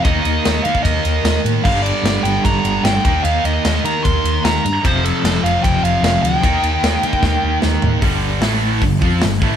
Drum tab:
CC |----------------|x---------------|----------------|----------------|
RD |x-x-x-x-x-x-x-x-|--x-x-x-x-x-x-x-|x-x-x-x-x-x-x-x-|x-x-x-x-x-x-x-x-|
HH |----------------|----------------|----------------|----------------|
SD |----o-------o---|----o-------o---|----o-------o---|----o-------o---|
FT |----------------|----------------|----------------|----------------|
BD |o------oo-------|o-------o-----o-|--------o-------|o-------o-------|

CC |----------------|----------------|
RD |x-x-x-x---------|----------------|
HH |----------------|o---o---o---o---|
SD |----o---o---o---|----o-------o---|
FT |--------------o-|----------------|
BD |o------oo-------|o-------o-o---o-|